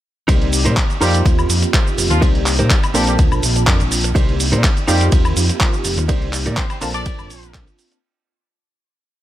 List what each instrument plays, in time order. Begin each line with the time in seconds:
0.28 fingered electric bass C2, analog polysynth A#3 C4 D#4 G4 D5, clean electric guitar D#4 G4 A#4 C5, kick, closed hi-hat, ride, cabasa
0.42 closed hi-hat
0.53 open hi-hat, cabasa
0.65 fingered electric bass A#2, clean electric guitar D#4 G4 A#4 C5, closed hi-hat, cabasa
0.77 kick, clap, closed hi-hat, ride, cabasa
0.90 closed hi-hat, cabasa
1.00 fingered electric bass F2, horn section G3 G4, analog polysynth A#3 C4 D#4 F4 G4, clean electric guitar D#4 F4 A#4 C5, open hi-hat, cabasa
1.14 closed hi-hat, cabasa
1.25 fingered electric bass D#2, kick, closed hi-hat, ride, cabasa
1.39 cabasa, high woodblock
1.49 fingered electric bass F2, open hi-hat, cabasa
1.62 muted clean electric guitar stroke, closed hi-hat, cabasa
1.73 clean electric guitar D#4 F4 A#4 C5, kick, clap, closed hi-hat, ride, cabasa
1.87 cabasa
1.97 fingered electric bass F1, muted clean electric guitar stroke, open hi-hat, cabasa
2.10 fingered electric bass D#2, horn section F3 F4, muted clean electric guitar stroke, closed hi-hat, cabasa
2.21 fingered electric bass C2, analog polysynth A#3 C4 D#4 G4 D5, clean electric guitar D#4 G4 A#4 C5, kick, closed hi-hat, ride, cabasa
2.35 closed hi-hat
2.46 clap, open hi-hat, cabasa
2.59 fingered electric bass A#2, clean electric guitar D#4 G4 A#4 C5, closed hi-hat, cabasa
2.70 kick, clap, closed hi-hat, ride, cabasa
2.84 closed hi-hat, cabasa, high woodblock
2.94 fingered electric bass A#1, horn section G3 G4, analog polysynth A#3 C4 D4 F4 A5, clean electric guitar D4 A4 A#4 C5, open hi-hat, cabasa
3.07 horn section G3 G4, closed hi-hat, cabasa
3.19 fingered electric bass D2, kick, closed hi-hat, ride, cabasa
3.32 fingered electric bass A#1, cabasa, high woodblock
3.43 fingered electric bass A#1, open hi-hat, cabasa
3.56 muted clean electric guitar stroke, closed hi-hat, cabasa
3.67 fingered electric bass F2, clean electric guitar D4 A4 A#4 D5, kick, clap, closed hi-hat, ride, cabasa
3.80 fingered electric bass A#1, closed hi-hat, cabasa
3.91 muted clean electric guitar stroke, open hi-hat, cabasa
4.04 muted clean electric guitar stroke, closed hi-hat, cabasa
4.15 fingered electric bass C2, analog polysynth A#3 C4 D#4 G4 D5, clean electric guitar D#4 G4 A#4 C5, kick, closed hi-hat, ride, cabasa
4.29 closed hi-hat
4.40 open hi-hat, cabasa
4.52 fingered electric bass A#2, clean electric guitar D#4 G4 A#4 C5, closed hi-hat, cabasa
4.64 kick, clap, closed hi-hat, ride, cabasa
4.77 closed hi-hat, cabasa
4.87 fingered electric bass F2, horn section G3 G4, analog polysynth A#3 C4 D#4 F4 G4, clean electric guitar D#4 F4 A#4 C5, open hi-hat, cabasa
5.01 closed hi-hat, cabasa
5.12 fingered electric bass D#2, kick, closed hi-hat, ride, cabasa
5.25 cabasa, high woodblock
5.36 fingered electric bass F2, open hi-hat, cabasa
5.49 muted clean electric guitar stroke, closed hi-hat, cabasa
5.60 clean electric guitar D#4 F4 A#4 C5, kick, clap, closed hi-hat, ride, cabasa
5.73 cabasa
5.85 fingered electric bass F1, muted clean electric guitar stroke, open hi-hat, cabasa
5.98 fingered electric bass D#2, muted clean electric guitar stroke, closed hi-hat, cabasa
6.08 fingered electric bass C2, analog polysynth A#3 C4 D#4 G4 D5, clean electric guitar D#4 G4 A#4 C5, kick, closed hi-hat, ride, cabasa
6.22 closed hi-hat
6.33 clap, open hi-hat, cabasa
6.46 fingered electric bass A#2, clean electric guitar D#4 G4 A#4 D5, closed hi-hat, cabasa
6.57 horn section C4 C5, kick, clap, closed hi-hat, ride, cabasa
6.70 horn section C4 C5, closed hi-hat, cabasa, high woodblock
6.81 fingered electric bass A#1, analog polysynth A#3 C4 D4 F4 A5, clean electric guitar D4 A4 A#4 C5, open hi-hat, cabasa
6.94 horn section D4 D5, closed hi-hat, cabasa
7.06 kick, closed hi-hat, ride, cabasa
7.19 fingered electric bass F1, cabasa, high woodblock
7.30 fingered electric bass A#1, open hi-hat, cabasa
7.43 muted clean electric guitar stroke, closed hi-hat, cabasa
7.54 clean electric guitar D4 A4 A#4 C5, kick, clap, closed hi-hat, ride, cabasa
7.67 closed hi-hat, cabasa
7.79 muted clean electric guitar stroke, open hi-hat, cabasa
7.92 muted clean electric guitar stroke, closed hi-hat, cabasa